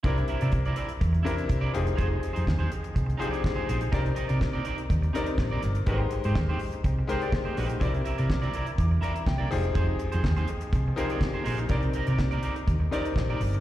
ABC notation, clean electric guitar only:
X:1
M:4/4
L:1/16
Q:1/4=124
K:Cm
V:1 name="Clean electric guitar"
[=EBd]2 [EB=e] [EBd] z [EBd] [EBd] z3 [EBd]2 z [EBd]2 z | [EAc]2 z [EAc] z [EAc]2 z3 [EAc] [EAd] z [EAc] [EAc] z | [EBd]2 [EBe] [EBd] z [EBd] [EBd] z3 [EBd]2 z [EBd]2 z | [EGc]2 z [EGc] z [EGc]2 z3 [EGc] [EGd] z [EGc] [EGc]2 |
[=EBd]2 [EB=e] [EBd] z [EBd] [EBd] z3 [EBd]2 z [EBd]2 z | [EAc]2 z [EAc] z [EAc]2 z3 [EAc] [EAd] z [EAc] [EAc]2 | [EBd]2 [EBe] [EBd] z [EBd] [EBd] z3 [EBd]2 z [EBd]2 z |]